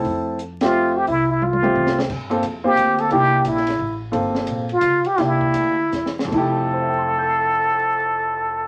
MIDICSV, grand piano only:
0, 0, Header, 1, 2, 480
1, 0, Start_track
1, 0, Key_signature, -1, "major"
1, 0, Tempo, 342075
1, 70, Time_signature, 3, 2, 24, 8
1, 7271, Tempo, 378310
1, 8711, Tempo, 401875
1, 11528, End_track
2, 0, Start_track
2, 0, Title_t, "Grand piano"
2, 0, Program_c, 0, 0
2, 0, Note_on_c, 0, 57, 57
2, 0, Note_on_c, 0, 60, 55
2, 0, Note_on_c, 0, 64, 51
2, 0, Note_on_c, 0, 69, 62
2, 518, Note_off_c, 0, 69, 0
2, 519, Note_off_c, 0, 57, 0
2, 523, Note_off_c, 0, 60, 0
2, 525, Note_off_c, 0, 64, 0
2, 860, Note_on_c, 0, 67, 67
2, 861, Note_on_c, 0, 57, 59
2, 861, Note_on_c, 0, 60, 54
2, 869, Note_on_c, 0, 76, 59
2, 1473, Note_off_c, 0, 57, 0
2, 1473, Note_off_c, 0, 60, 0
2, 1473, Note_off_c, 0, 67, 0
2, 1477, Note_off_c, 0, 76, 0
2, 2276, Note_on_c, 0, 57, 59
2, 2283, Note_on_c, 0, 76, 52
2, 2285, Note_on_c, 0, 67, 62
2, 2288, Note_on_c, 0, 60, 55
2, 2897, Note_off_c, 0, 57, 0
2, 2901, Note_off_c, 0, 76, 0
2, 2902, Note_off_c, 0, 67, 0
2, 2903, Note_off_c, 0, 60, 0
2, 3224, Note_on_c, 0, 58, 62
2, 3232, Note_on_c, 0, 60, 55
2, 3234, Note_on_c, 0, 65, 56
2, 3237, Note_on_c, 0, 69, 69
2, 3389, Note_off_c, 0, 58, 0
2, 3393, Note_off_c, 0, 60, 0
2, 3394, Note_off_c, 0, 65, 0
2, 3395, Note_off_c, 0, 69, 0
2, 3704, Note_on_c, 0, 65, 54
2, 3707, Note_on_c, 0, 58, 66
2, 3709, Note_on_c, 0, 60, 54
2, 3709, Note_on_c, 0, 72, 65
2, 4328, Note_off_c, 0, 65, 0
2, 4330, Note_off_c, 0, 58, 0
2, 4331, Note_off_c, 0, 60, 0
2, 4331, Note_off_c, 0, 72, 0
2, 4366, Note_on_c, 0, 58, 59
2, 4366, Note_on_c, 0, 62, 55
2, 4369, Note_on_c, 0, 67, 66
2, 4370, Note_on_c, 0, 64, 57
2, 5090, Note_off_c, 0, 58, 0
2, 5090, Note_off_c, 0, 62, 0
2, 5091, Note_off_c, 0, 67, 0
2, 5092, Note_off_c, 0, 64, 0
2, 5776, Note_on_c, 0, 58, 53
2, 5779, Note_on_c, 0, 65, 50
2, 5783, Note_on_c, 0, 69, 59
2, 5784, Note_on_c, 0, 60, 49
2, 6518, Note_off_c, 0, 58, 0
2, 6519, Note_off_c, 0, 65, 0
2, 6521, Note_off_c, 0, 69, 0
2, 6522, Note_off_c, 0, 60, 0
2, 7266, Note_on_c, 0, 58, 49
2, 7269, Note_on_c, 0, 67, 59
2, 7272, Note_on_c, 0, 64, 44
2, 7273, Note_on_c, 0, 62, 48
2, 7972, Note_off_c, 0, 58, 0
2, 7974, Note_off_c, 0, 67, 0
2, 7975, Note_off_c, 0, 64, 0
2, 7976, Note_off_c, 0, 62, 0
2, 8622, Note_on_c, 0, 41, 56
2, 8655, Note_on_c, 0, 53, 51
2, 8701, Note_on_c, 0, 57, 52
2, 8741, Note_on_c, 0, 64, 54
2, 8772, Note_on_c, 0, 67, 64
2, 9211, Note_on_c, 0, 72, 42
2, 9293, Note_on_c, 0, 76, 36
2, 9396, Note_on_c, 0, 79, 37
2, 9507, Note_on_c, 0, 84, 34
2, 9621, Note_on_c, 0, 88, 31
2, 9747, Note_on_c, 0, 91, 32
2, 9884, Note_on_c, 0, 96, 31
2, 11528, Note_off_c, 0, 41, 0
2, 11528, Note_off_c, 0, 53, 0
2, 11528, Note_off_c, 0, 57, 0
2, 11528, Note_off_c, 0, 64, 0
2, 11528, Note_off_c, 0, 67, 0
2, 11528, Note_off_c, 0, 72, 0
2, 11528, Note_off_c, 0, 76, 0
2, 11528, Note_off_c, 0, 79, 0
2, 11528, Note_off_c, 0, 84, 0
2, 11528, Note_off_c, 0, 88, 0
2, 11528, Note_off_c, 0, 91, 0
2, 11528, Note_off_c, 0, 96, 0
2, 11528, End_track
0, 0, End_of_file